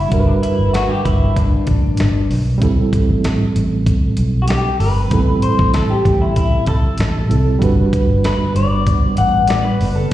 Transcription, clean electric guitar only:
0, 0, Header, 1, 2, 480
1, 0, Start_track
1, 0, Key_signature, 1, "major"
1, 0, Tempo, 625130
1, 91, Time_signature, 4, 2, 24, 8
1, 7783, End_track
2, 0, Start_track
2, 0, Title_t, "Clean electric guitar"
2, 0, Program_c, 0, 27
2, 0, Note_on_c, 0, 64, 92
2, 208, Note_on_c, 0, 62, 80
2, 222, Note_off_c, 0, 64, 0
2, 246, Note_off_c, 0, 62, 0
2, 329, Note_on_c, 0, 64, 80
2, 561, Note_off_c, 0, 64, 0
2, 564, Note_on_c, 0, 66, 87
2, 686, Note_off_c, 0, 66, 0
2, 686, Note_on_c, 0, 67, 78
2, 801, Note_off_c, 0, 67, 0
2, 804, Note_on_c, 0, 64, 76
2, 1049, Note_on_c, 0, 62, 70
2, 1055, Note_off_c, 0, 64, 0
2, 1739, Note_off_c, 0, 62, 0
2, 3394, Note_on_c, 0, 66, 65
2, 3443, Note_off_c, 0, 66, 0
2, 3446, Note_on_c, 0, 67, 87
2, 3683, Note_off_c, 0, 67, 0
2, 3686, Note_on_c, 0, 71, 89
2, 4164, Note_off_c, 0, 71, 0
2, 4167, Note_on_c, 0, 72, 106
2, 4392, Note_off_c, 0, 72, 0
2, 4411, Note_on_c, 0, 69, 99
2, 4530, Note_on_c, 0, 67, 81
2, 4534, Note_off_c, 0, 69, 0
2, 4772, Note_on_c, 0, 64, 79
2, 4778, Note_off_c, 0, 67, 0
2, 4884, Note_off_c, 0, 64, 0
2, 4893, Note_on_c, 0, 64, 86
2, 5128, Note_off_c, 0, 64, 0
2, 5131, Note_on_c, 0, 69, 85
2, 5820, Note_off_c, 0, 69, 0
2, 6336, Note_on_c, 0, 71, 92
2, 6572, Note_off_c, 0, 71, 0
2, 6575, Note_on_c, 0, 74, 89
2, 7047, Note_off_c, 0, 74, 0
2, 7050, Note_on_c, 0, 78, 98
2, 7285, Note_off_c, 0, 78, 0
2, 7288, Note_on_c, 0, 74, 104
2, 7406, Note_on_c, 0, 71, 100
2, 7413, Note_off_c, 0, 74, 0
2, 7641, Note_off_c, 0, 71, 0
2, 7644, Note_on_c, 0, 69, 89
2, 7772, Note_off_c, 0, 69, 0
2, 7783, End_track
0, 0, End_of_file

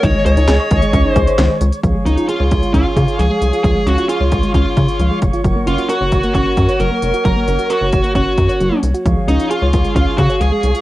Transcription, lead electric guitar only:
0, 0, Header, 1, 2, 480
1, 0, Start_track
1, 0, Key_signature, -5, "major"
1, 0, Tempo, 451128
1, 34, Time_signature, 4, 2, 24, 8
1, 11503, End_track
2, 0, Start_track
2, 0, Title_t, "Lead electric guitar"
2, 0, Program_c, 0, 29
2, 34, Note_on_c, 0, 73, 100
2, 261, Note_off_c, 0, 73, 0
2, 274, Note_on_c, 0, 73, 94
2, 1189, Note_off_c, 0, 73, 0
2, 1189, Note_on_c, 0, 72, 94
2, 1672, Note_off_c, 0, 72, 0
2, 2195, Note_on_c, 0, 63, 80
2, 2430, Note_off_c, 0, 63, 0
2, 2435, Note_on_c, 0, 65, 88
2, 2902, Note_off_c, 0, 65, 0
2, 2914, Note_on_c, 0, 65, 90
2, 3396, Note_on_c, 0, 68, 98
2, 3409, Note_off_c, 0, 65, 0
2, 3862, Note_off_c, 0, 68, 0
2, 3875, Note_on_c, 0, 68, 101
2, 4115, Note_on_c, 0, 66, 91
2, 4122, Note_off_c, 0, 68, 0
2, 4351, Note_off_c, 0, 66, 0
2, 4356, Note_on_c, 0, 65, 88
2, 4801, Note_off_c, 0, 65, 0
2, 4835, Note_on_c, 0, 65, 78
2, 5512, Note_off_c, 0, 65, 0
2, 6035, Note_on_c, 0, 65, 82
2, 6270, Note_off_c, 0, 65, 0
2, 6274, Note_on_c, 0, 66, 83
2, 6741, Note_off_c, 0, 66, 0
2, 6754, Note_on_c, 0, 66, 89
2, 7234, Note_on_c, 0, 70, 93
2, 7249, Note_off_c, 0, 66, 0
2, 7702, Note_off_c, 0, 70, 0
2, 7715, Note_on_c, 0, 70, 101
2, 8195, Note_on_c, 0, 66, 84
2, 8209, Note_off_c, 0, 70, 0
2, 8641, Note_off_c, 0, 66, 0
2, 8674, Note_on_c, 0, 66, 73
2, 9352, Note_off_c, 0, 66, 0
2, 9874, Note_on_c, 0, 63, 80
2, 10110, Note_off_c, 0, 63, 0
2, 10114, Note_on_c, 0, 65, 87
2, 10581, Note_off_c, 0, 65, 0
2, 10594, Note_on_c, 0, 65, 93
2, 10829, Note_off_c, 0, 65, 0
2, 10834, Note_on_c, 0, 66, 89
2, 11074, Note_on_c, 0, 68, 96
2, 11081, Note_off_c, 0, 66, 0
2, 11503, Note_off_c, 0, 68, 0
2, 11503, End_track
0, 0, End_of_file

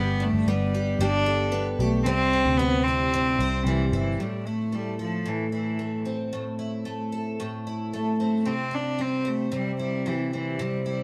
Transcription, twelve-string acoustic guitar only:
0, 0, Header, 1, 2, 480
1, 0, Start_track
1, 0, Tempo, 532860
1, 1856, Time_signature, 4, 2, 24, 8
1, 9939, End_track
2, 0, Start_track
2, 0, Title_t, "Twelve-string acoustic guitar"
2, 0, Program_c, 0, 25
2, 0, Note_on_c, 0, 55, 91
2, 0, Note_on_c, 0, 62, 60
2, 177, Note_off_c, 0, 62, 0
2, 180, Note_on_c, 0, 62, 64
2, 430, Note_on_c, 0, 59, 73
2, 672, Note_on_c, 0, 67, 62
2, 902, Note_off_c, 0, 55, 0
2, 906, Note_on_c, 0, 55, 91
2, 1137, Note_on_c, 0, 69, 65
2, 1357, Note_off_c, 0, 59, 0
2, 1367, Note_on_c, 0, 59, 75
2, 1619, Note_off_c, 0, 67, 0
2, 1623, Note_on_c, 0, 67, 60
2, 1857, Note_on_c, 0, 48, 88
2, 1899, Note_off_c, 0, 59, 0
2, 1903, Note_off_c, 0, 62, 0
2, 1903, Note_off_c, 0, 69, 0
2, 2100, Note_on_c, 0, 60, 57
2, 2335, Note_off_c, 0, 55, 0
2, 2335, Note_on_c, 0, 55, 74
2, 2590, Note_off_c, 0, 67, 0
2, 2594, Note_on_c, 0, 64, 55
2, 2814, Note_off_c, 0, 48, 0
2, 2825, Note_on_c, 0, 48, 86
2, 3066, Note_on_c, 0, 72, 64
2, 3291, Note_off_c, 0, 55, 0
2, 3302, Note_on_c, 0, 55, 68
2, 3539, Note_off_c, 0, 64, 0
2, 3542, Note_on_c, 0, 64, 59
2, 3780, Note_off_c, 0, 48, 0
2, 3784, Note_on_c, 0, 45, 70
2, 3825, Note_off_c, 0, 55, 0
2, 4020, Note_off_c, 0, 64, 0
2, 4023, Note_on_c, 0, 64, 47
2, 4255, Note_on_c, 0, 57, 50
2, 4493, Note_off_c, 0, 72, 0
2, 4496, Note_on_c, 0, 69, 49
2, 4723, Note_off_c, 0, 45, 0
2, 4734, Note_on_c, 0, 45, 64
2, 4971, Note_off_c, 0, 64, 0
2, 4975, Note_on_c, 0, 64, 45
2, 5204, Note_off_c, 0, 57, 0
2, 5215, Note_on_c, 0, 57, 49
2, 5253, Note_off_c, 0, 60, 0
2, 5453, Note_on_c, 0, 60, 47
2, 5688, Note_off_c, 0, 45, 0
2, 5699, Note_on_c, 0, 45, 65
2, 5931, Note_off_c, 0, 64, 0
2, 5934, Note_on_c, 0, 64, 46
2, 6162, Note_off_c, 0, 57, 0
2, 6173, Note_on_c, 0, 57, 54
2, 6406, Note_off_c, 0, 69, 0
2, 6417, Note_on_c, 0, 69, 48
2, 6653, Note_off_c, 0, 45, 0
2, 6664, Note_on_c, 0, 45, 71
2, 6904, Note_off_c, 0, 64, 0
2, 6908, Note_on_c, 0, 64, 45
2, 7137, Note_off_c, 0, 57, 0
2, 7147, Note_on_c, 0, 57, 52
2, 7382, Note_off_c, 0, 60, 0
2, 7385, Note_on_c, 0, 60, 49
2, 7612, Note_off_c, 0, 45, 0
2, 7615, Note_on_c, 0, 48, 65
2, 7668, Note_off_c, 0, 69, 0
2, 7672, Note_off_c, 0, 57, 0
2, 7843, Note_off_c, 0, 64, 0
2, 7846, Note_on_c, 0, 64, 46
2, 8094, Note_on_c, 0, 55, 56
2, 8332, Note_on_c, 0, 72, 52
2, 8561, Note_off_c, 0, 48, 0
2, 8572, Note_on_c, 0, 48, 67
2, 8812, Note_off_c, 0, 64, 0
2, 8823, Note_on_c, 0, 64, 44
2, 9057, Note_off_c, 0, 55, 0
2, 9060, Note_on_c, 0, 55, 52
2, 9304, Note_off_c, 0, 60, 0
2, 9307, Note_on_c, 0, 60, 45
2, 9531, Note_off_c, 0, 48, 0
2, 9542, Note_on_c, 0, 48, 68
2, 9770, Note_off_c, 0, 64, 0
2, 9781, Note_on_c, 0, 64, 49
2, 9939, Note_off_c, 0, 48, 0
2, 9939, Note_off_c, 0, 55, 0
2, 9939, Note_off_c, 0, 60, 0
2, 9939, Note_off_c, 0, 64, 0
2, 9939, Note_off_c, 0, 72, 0
2, 9939, End_track
0, 0, End_of_file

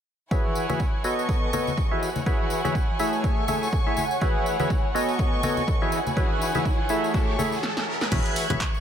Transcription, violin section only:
0, 0, Header, 1, 2, 480
1, 0, Start_track
1, 0, Key_signature, 4, "major"
1, 0, Tempo, 487805
1, 308, Time_signature, 4, 2, 24, 8
1, 8661, End_track
2, 0, Start_track
2, 0, Title_t, "Violin section"
2, 0, Program_c, 0, 48
2, 307, Note_on_c, 0, 64, 67
2, 307, Note_on_c, 0, 73, 65
2, 307, Note_on_c, 0, 78, 63
2, 307, Note_on_c, 0, 80, 75
2, 1020, Note_off_c, 0, 64, 0
2, 1020, Note_off_c, 0, 73, 0
2, 1020, Note_off_c, 0, 78, 0
2, 1020, Note_off_c, 0, 80, 0
2, 1026, Note_on_c, 0, 69, 66
2, 1026, Note_on_c, 0, 85, 78
2, 1027, Note_on_c, 0, 59, 70
2, 1027, Note_on_c, 0, 75, 69
2, 1977, Note_off_c, 0, 59, 0
2, 1977, Note_off_c, 0, 69, 0
2, 1977, Note_off_c, 0, 85, 0
2, 1978, Note_off_c, 0, 75, 0
2, 1987, Note_on_c, 0, 78, 67
2, 1987, Note_on_c, 0, 80, 84
2, 1988, Note_on_c, 0, 64, 73
2, 1988, Note_on_c, 0, 73, 68
2, 3175, Note_off_c, 0, 78, 0
2, 3176, Note_off_c, 0, 64, 0
2, 3176, Note_off_c, 0, 73, 0
2, 3187, Note_on_c, 0, 69, 73
2, 3188, Note_on_c, 0, 85, 81
2, 4138, Note_off_c, 0, 69, 0
2, 4138, Note_off_c, 0, 85, 0
2, 4149, Note_on_c, 0, 64, 68
2, 4149, Note_on_c, 0, 73, 64
2, 4149, Note_on_c, 0, 78, 66
2, 4839, Note_off_c, 0, 80, 0
2, 4861, Note_off_c, 0, 64, 0
2, 4861, Note_off_c, 0, 73, 0
2, 4861, Note_off_c, 0, 78, 0
2, 4868, Note_on_c, 0, 59, 75
2, 4868, Note_on_c, 0, 69, 72
2, 4868, Note_on_c, 0, 75, 68
2, 4869, Note_on_c, 0, 85, 83
2, 5818, Note_off_c, 0, 59, 0
2, 5818, Note_off_c, 0, 69, 0
2, 5818, Note_off_c, 0, 75, 0
2, 5818, Note_off_c, 0, 85, 0
2, 5827, Note_on_c, 0, 64, 76
2, 5828, Note_on_c, 0, 73, 68
2, 5828, Note_on_c, 0, 78, 72
2, 5828, Note_on_c, 0, 80, 90
2, 7015, Note_off_c, 0, 64, 0
2, 7016, Note_off_c, 0, 73, 0
2, 7016, Note_off_c, 0, 78, 0
2, 7028, Note_on_c, 0, 69, 70
2, 7028, Note_on_c, 0, 85, 79
2, 7491, Note_off_c, 0, 80, 0
2, 7503, Note_off_c, 0, 69, 0
2, 7503, Note_off_c, 0, 85, 0
2, 7988, Note_on_c, 0, 76, 71
2, 7988, Note_on_c, 0, 85, 73
2, 7988, Note_on_c, 0, 90, 65
2, 7988, Note_on_c, 0, 92, 80
2, 8661, Note_off_c, 0, 76, 0
2, 8661, Note_off_c, 0, 85, 0
2, 8661, Note_off_c, 0, 90, 0
2, 8661, Note_off_c, 0, 92, 0
2, 8661, End_track
0, 0, End_of_file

